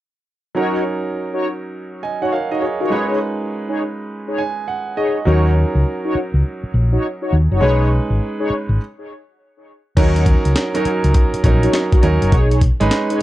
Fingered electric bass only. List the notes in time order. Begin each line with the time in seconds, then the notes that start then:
5.27 D#2
5.75 C#2
6.15 muted fingered electric bass stroke
6.34 C#2
6.63 muted fingered electric bass stroke
6.74 A#1
7.33 D#2
7.51 F#1
7.62 B1
8.10 G#1
8.50 muted fingered electric bass stroke
8.69 G#1
9.97 D#2
10.46 C#2
10.85 muted fingered electric bass stroke
11.04 C#2
11.34 muted fingered electric bass stroke
11.44 A#1
12.03 D#2
12.22 F#1
12.32 B1
12.81 G#1